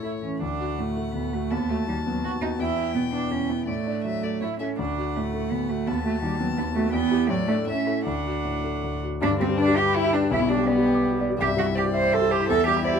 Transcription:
0.00 0.38 A2 soft
0.00 0.03 A3 soft
0.00 0.34 A3 soft
0.00 0.15 E4 soft
0.00 0.11 E4 soft
0.00 0.45 A4 soft
0.00 0.21 C#5 medium
0.22 0.42 E3 soft
0.22 0.41 C#4 soft
0.42 1.14 D2 soft
0.42 0.80 D4 medium
0.42 1.52 F#5 soft
0.60 0.89 F#4 soft
0.79 1.08 A2 soft
0.79 1.14 A3 medium
0.97 1.26 A3 soft
1.15 1.50 D2 soft
1.15 1.35 B3 medium
1.33 1.53 A3 medium
1.33 1.51 F#4 soft
1.51 2.23 D#2 soft
1.51 1.71 B3 medium
1.51 2.62 A5 soft
1.70 1.88 A3 medium
1.70 1.99 F#4 soft
1.87 2.16 D#3 soft
1.87 1.95 G3 medium
2.06 2.24 F#3 medium
2.06 2.35 B3 soft
2.24 2.58 D#2 soft
2.24 2.31 F#4 medium
2.41 2.49 D#4 medium
2.41 2.59 F#4 soft
2.59 3.29 E2 medium
2.59 2.95 E4 medium
2.59 3.66 G5 soft
2.77 3.05 E4 soft
2.95 3.24 B2 soft
2.95 3.02 B3 medium
3.13 3.42 B3 soft
3.13 3.33 D4 medium
3.31 3.66 E2 soft
3.31 3.51 C#4 medium
3.49 3.67 B3 medium
3.49 3.68 E4 soft
3.67 4.40 A2 soft
3.67 4.44 A3 medium
3.67 4.00 D5 soft
3.86 4.16 D4 soft
4.05 4.34 F#3 soft
4.05 4.25 E5 medium
4.23 4.42 A3 soft
4.23 4.41 D5 soft
4.41 4.78 A2 soft
4.41 4.60 E4 medium
4.41 4.49 C#5 soft
4.59 4.77 C#4 soft
4.59 4.79 C#4 soft
4.59 4.77 A4 soft
4.59 4.67 E5 soft
4.79 5.50 D2 soft
4.79 5.17 D4 medium
4.79 5.89 F#5 soft
4.98 5.27 F#4 soft
5.16 5.45 A2 soft
5.16 5.53 A3 medium
5.34 5.63 A3 soft
5.51 5.86 D2 soft
5.51 5.71 B3 medium
5.69 5.88 A3 medium
5.69 5.87 F#4 soft
5.87 6.56 D#2 medium
5.87 6.04 B3 medium
5.87 6.94 A5 soft
6.05 6.22 A3 medium
6.05 6.33 F#4 soft
6.22 6.51 D#3 soft
6.22 6.39 G3 medium
6.40 6.47 F#3 medium
6.40 6.69 B3 soft
6.57 6.93 D#2 soft
6.57 6.65 B3 medium
6.75 6.93 A3 medium
6.75 6.94 F#4 medium
6.93 7.28 E2 medium
6.93 7.31 B3 medium
6.93 7.28 G5 medium
7.11 7.28 E4 soft
7.11 7.28 G4 medium
7.29 7.66 A2 medium
7.29 7.47 F#3 medium
7.29 7.66 D5 medium
7.47 7.55 A3 medium
7.47 7.65 D4 soft
7.47 7.65 A4 medium
7.67 8.04 A2 soft
7.67 8.05 C#4 medium
7.67 8.05 E5 medium
7.87 8.04 E4 soft
7.87 8.04 A4 soft
8.06 8.82 D2 soft
8.06 9.01 D4 medium
8.06 9.01 F#5 soft
8.26 8.57 F#4 soft
8.45 8.76 A2 soft
8.64 8.95 A3 soft
8.84 9.21 D2 soft
9.03 9.22 F#4 soft
9.21 10.28 G2 medium
9.21 9.39 D4 medium
9.21 9.30 D4 loud
9.31 9.46 D3 soft
9.40 9.55 G3 soft
9.40 9.60 C4 medium
9.40 9.48 C4 medium
9.49 9.64 G4 medium
9.58 9.78 D4 medium
9.58 9.79 D4 medium
9.58 9.74 B4 soft
9.68 9.83 G4 medium
9.77 9.96 G4 medium
9.77 9.98 G4 medium
9.77 9.91 G5 medium
9.86 10.01 B5 medium
9.95 10.14 E4 medium
9.95 10.15 E4 medium
9.95 10.10 G5 soft
10.05 10.19 G4 soft
10.13 10.33 D4 medium
10.13 10.32 D4 medium
10.13 10.28 B4 soft
10.23 10.32 G4 soft
10.31 11.37 B1 medium
10.31 10.50 E4 medium
10.31 10.39 E4 medium
10.40 10.55 B2 soft
10.48 10.64 G3 soft
10.48 10.66 D4 medium
10.48 10.70 D4 medium
10.59 10.73 G4 medium
10.67 11.21 B3 medium
10.67 11.22 B3 medium
10.67 10.82 D5 medium
10.77 10.91 G4 soft
10.86 11.00 G5 soft
10.94 11.09 D6 medium
11.03 11.18 G5 soft
11.21 11.36 D5 soft
11.30 11.40 G4 soft
11.39 12.44 C2 medium
11.39 11.48 G4 medium
11.39 11.77 E5 medium
11.48 11.63 G2 soft
11.57 11.72 G3 medium
11.57 11.66 F#4 medium
11.66 11.81 E4 soft
11.75 11.84 G4 medium
11.75 11.90 C5 medium
11.75 12.14 D5 medium
11.84 11.99 G4 medium
11.94 12.15 C5 medium
11.94 12.08 E5 medium
12.02 12.17 C6 medium
12.12 12.33 A4 medium
12.12 12.50 C5 medium
12.12 12.27 E5 medium
12.21 12.36 G4 soft
12.31 12.49 G4 medium
12.31 12.45 C5 medium
12.40 12.49 E4 medium
12.48 13.00 E2 medium
12.48 12.67 A4 loud
12.48 12.85 E5 medium
12.59 12.73 E3 soft
12.67 12.81 G3 soft
12.67 12.84 G4 medium
12.77 12.90 E4 medium
12.84 13.00 E4 medium
12.84 12.99 C5 medium
12.84 13.00 D5 medium
12.93 13.00 G4 medium

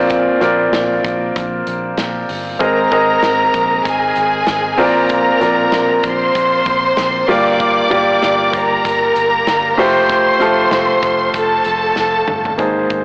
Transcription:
0.00 0.30 A#1 medium
0.00 0.69 A#2 medium
0.00 0.31 C4 loud
0.00 0.31 F4 medium
0.00 0.31 A#4 medium
0.00 0.31 D5 loud
0.10 kick loud
0.10 closed hi-hat medium
0.40 0.67 A#1 medium
0.40 1.39 C4 medium
0.40 1.40 F4 medium
0.40 1.40 A#4 medium
0.40 1.40 D5 medium
0.40 snare soft
0.40 closed hi-hat medium
0.72 0.98 A#1 medium
0.72 snare loud
0.72 closed hi-hat medium
1.04 1.30 A#1 medium
1.04 kick loud
1.04 closed hi-hat medium
1.36 1.61 A#1 loud
1.36 kick medium
1.36 closed hi-hat medium
1.67 1.93 A#1 medium
1.67 closed hi-hat medium
1.98 2.24 A#1 medium
1.98 snare medium
1.98 closed hi-hat medium
2.29 2.55 G1 medium
2.29 open hi-hat medium
2.59 2.86 G#1 loud
2.59 3.50 G#2 medium
2.59 2.85 C4 medium
2.59 2.86 G#4 medium
2.59 2.86 A#4 medium
2.59 3.83 A#4 medium
2.59 2.86 D#5 medium
2.59 3.83 A#5 medium
2.59 kick loud
2.59 closed hi-hat medium
2.91 3.17 G#1 medium
2.91 3.89 C4 medium
2.91 3.90 G#4 medium
2.91 3.90 A#4 medium
2.91 3.90 D#5 medium
2.91 kick loud
2.91 closed hi-hat medium
3.23 3.48 G#1 loud
3.23 snare loud
3.23 closed hi-hat medium
3.54 3.80 A#1 medium
3.54 kick loud
3.54 closed hi-hat medium
3.85 4.11 G#1 loud
3.85 4.77 G#4 medium
3.85 4.77 G#5 medium
3.85 kick medium
3.85 closed hi-hat medium
4.15 4.42 G#1 medium
4.15 closed hi-hat medium
4.47 4.74 G#1 medium
4.47 snare loud
4.47 closed hi-hat medium
4.78 5.30 A#1 loud
4.78 5.68 A#2 medium
4.78 5.30 C4 loud
4.78 5.30 F4 medium
4.78 5.30 A#4 medium
4.78 6.02 A#4 medium
4.78 5.31 D5 loud
4.78 6.02 A#5 medium
4.78 open hi-hat medium
5.09 kick loud
5.09 closed hi-hat medium
5.40 5.67 A#1 medium
5.40 6.39 C4 medium
5.40 6.39 F4 medium
5.40 6.39 A#4 medium
5.40 6.39 D5 medium
5.40 snare soft
5.40 closed hi-hat medium
5.72 5.98 A#1 loud
5.72 snare loud
5.72 closed hi-hat medium
6.03 6.29 A#1 medium
6.03 7.26 C5 medium
6.03 7.26 C6 medium
6.03 kick medium
6.03 closed hi-hat medium
6.35 6.61 A#1 loud
6.35 kick medium
6.35 closed hi-hat medium
6.66 6.92 A#1 loud
6.66 kick medium
6.66 closed hi-hat medium
6.97 7.23 A#1 medium
6.97 snare loud
6.97 closed hi-hat medium
7.28 7.80 G1 loud
7.28 8.18 G2 medium
7.28 7.80 A#3 loud
7.28 7.80 F4 medium
7.28 7.80 G4 medium
7.28 8.51 D5 medium
7.28 7.81 D5 loud
7.28 8.51 D6 medium
7.28 open hi-hat medium
7.60 kick loud
7.60 closed hi-hat medium
7.90 8.17 G1 medium
7.90 8.88 A#3 medium
7.90 8.88 F4 medium
7.90 8.89 G4 medium
7.90 8.89 D5 loud
7.90 kick loud
7.90 closed hi-hat medium
8.23 8.48 G1 medium
8.23 snare loud
8.23 closed hi-hat medium
8.53 8.79 G1 medium
8.53 9.76 A#4 medium
8.53 9.76 A#5 medium
8.53 kick loud
8.53 closed hi-hat medium
8.85 9.10 G1 medium
8.85 kick medium
8.85 closed hi-hat loud
9.16 9.42 G1 medium
9.16 closed hi-hat medium
9.47 9.73 G1 loud
9.47 snare loud
9.47 closed hi-hat medium
9.78 10.29 F1 loud
9.78 10.29 A3 medium
9.78 10.29 F4 medium
9.78 10.30 G4 medium
9.78 11.31 C5 medium
9.78 10.30 C5 loud
9.78 11.31 C6 medium
9.78 open hi-hat medium
10.10 kick loud
10.10 closed hi-hat medium
10.40 10.66 F1 medium
10.40 11.38 A3 medium
10.40 11.38 F4 medium
10.40 11.38 G4 medium
10.40 11.39 A4 loud
10.40 closed hi-hat medium
10.71 10.97 F1 medium
10.71 snare loud
10.71 closed hi-hat medium
11.02 11.28 F1 medium
11.02 kick loud
11.02 closed hi-hat medium
11.34 11.60 F1 loud
11.34 12.57 A4 medium
11.34 12.57 A5 medium
11.34 kick loud
11.34 closed hi-hat medium
11.65 11.91 F1 medium
11.65 closed hi-hat medium
11.96 12.22 F1 medium
11.96 snare medium
12.28 12.54 G1 medium
12.28 mid tom medium
12.45 floor tom medium
12.57 12.85 G#1 medium
12.57 13.04 G#2 medium
12.57 13.04 A#3 medium
12.57 13.04 D#4 medium
12.57 13.04 G#4 medium
12.57 13.04 C5 medium
12.57 kick loud
12.57 closed hi-hat medium
12.90 13.04 G#1 medium
12.90 kick medium
12.90 closed hi-hat medium

